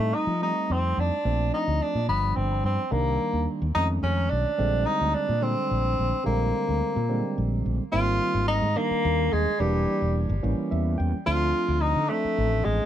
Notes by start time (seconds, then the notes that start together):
Already playing: G3 A3 C4 D#4
0.00 A2
0.15 D#4
0.27 F3
0.41 G3 A3 C4 D#4
0.70 F2 C4
0.97 F2 D4
1.25 A#1 F3 A3 C4 D4
1.54 D#4
1.67 D2
1.82 D4
1.95 A#2
2.08 G1 F3 G3 B3 D4
2.36 G1 C4
2.64 G2 C4
2.91 C2 D#3 G3 A#3 D4
3.33 D#2
3.62 D#2
3.75 F2 D#3 G#3 A3 C#4 D#4
4.03 F2 C#4
4.30 B1 D4
4.58 A#1 D3 G3 G#3 C4
4.86 D#4
5.01 D2
5.14 D4
5.29 A#2
5.41 D3 G3 G#3 C4 D4
5.71 A#1
5.99 A#1
6.24 A#1 D3 G3 G#3 A#3 C4
6.69 D2
6.96 A#2
7.09 D3 G3 G#3 C4
7.38 A#1
7.66 A#1
7.92 G#1 D#3 G3 A#3 C4 F4
8.34 G#1
8.48 D#4
8.62 G#2
8.76 D#3 G3 A#3 D4
8.91 muted fretless electric bass stroke
9.05 D#2
9.33 D#2 G#3
9.47 muted fretless electric bass stroke
9.60 E1 E3 G3 A#3 D4
10.02 E1
10.29 G1
10.43 A1 E3 G3 A#3 C#4
10.58 muted fretless electric bass stroke
10.71 E2 E5
10.98 E2 G5
11.13 muted fretless electric bass stroke
11.26 D2 F3 A3 C4 D4 F4
11.68 D2
11.81 D#4
11.96 D3
12.09 F3 A3 C4 D4
12.24 muted fretless electric bass stroke
12.38 A1
12.65 A1 G#3
12.80 muted fretless electric bass stroke